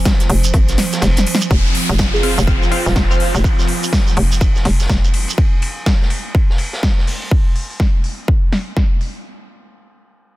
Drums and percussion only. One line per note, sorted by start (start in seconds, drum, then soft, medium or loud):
0.05 kick loud
0.05 snare loud
0.05 closed hi-hat medium
0.05 ride medium
0.05 shekere medium
0.20 snare soft
0.20 closed hi-hat medium
0.20 shekere soft
0.30 open hi-hat loud
0.30 ride medium
0.44 closed hi-hat soft
0.44 shekere medium
0.53 kick loud
0.53 closed hi-hat medium
0.53 ride medium
0.53 shekere medium
0.68 snare soft
0.68 closed hi-hat medium
0.68 shekere soft
0.78 snare medium
0.78 open hi-hat loud
0.78 ride medium
0.93 snare soft
0.93 closed hi-hat soft
0.93 shekere medium
1.02 snare loud
1.02 snare medium
1.02 closed hi-hat medium
1.02 ride medium
1.02 shekere medium
1.17 snare medium
1.17 closed hi-hat medium
1.17 ride soft
1.17 shekere soft
1.26 open hi-hat loud
1.26 ride medium
1.35 snare loud
1.41 closed hi-hat soft
1.41 ride medium
1.41 shekere medium
1.51 kick loud
1.51 ride medium
1.51 shekere medium
1.66 shekere soft
1.74 open hi-hat loud
1.74 ride medium
1.90 shekere medium
1.99 kick loud
1.99 snare loud
1.99 ride medium
1.99 shekere medium
2.14 snare soft
2.14 shekere soft
2.23 open hi-hat loud
2.23 ride medium
2.38 shekere medium
2.47 kick loud
2.47 ride medium
2.47 shekere medium
2.62 snare soft
2.62 shekere soft
2.72 open hi-hat loud
2.72 ride medium
2.86 snare medium
2.86 shekere medium
2.95 kick loud
2.95 snare loud
2.95 ride medium
2.95 shekere medium
3.11 snare soft
3.11 shekere soft
3.20 open hi-hat loud
3.20 open hi-hat medium
3.35 ride soft
3.35 shekere medium
3.44 kick loud
3.44 ride medium
3.44 shekere medium
3.59 snare medium
3.59 shekere soft
3.67 open hi-hat loud
3.67 ride medium
3.83 open hi-hat medium
3.83 shekere medium
3.92 kick loud
3.92 snare loud
3.92 ride medium
3.92 shekere medium
4.07 snare soft
4.07 shekere soft
4.17 open hi-hat loud
4.17 ride medium
4.32 shekere medium
4.41 kick loud
4.41 ride medium
4.41 shekere medium
4.56 snare soft
4.56 shekere soft
4.65 snare medium
4.65 open hi-hat loud
4.65 ride medium
4.80 snare soft
4.80 shekere medium
4.89 kick loud
4.89 snare loud
4.89 ride medium
4.89 shekere medium
5.04 ride soft
5.04 shekere soft
5.14 open hi-hat loud
5.14 ride medium
5.28 ride soft
5.28 shekere medium
5.38 kick loud
5.38 ride medium
5.62 open hi-hat loud
5.62 ride medium
5.86 kick loud
5.86 snare loud
5.86 ride medium
6.02 snare soft
6.10 open hi-hat loud
6.10 ride medium
6.35 kick loud
6.35 ride medium
6.50 snare soft
6.58 open hi-hat loud
6.58 ride medium
6.73 snare soft
6.83 kick loud
6.83 snare loud
6.83 ride medium
6.98 snare soft
7.07 open hi-hat loud
7.07 open hi-hat medium
7.22 ride soft
7.31 kick loud
7.56 open hi-hat loud
7.70 open hi-hat medium
7.80 kick loud
7.80 snare loud
8.04 open hi-hat loud
8.28 kick loud
8.52 snare medium
8.52 open hi-hat loud
8.77 kick loud
8.77 snare loud
9.01 open hi-hat loud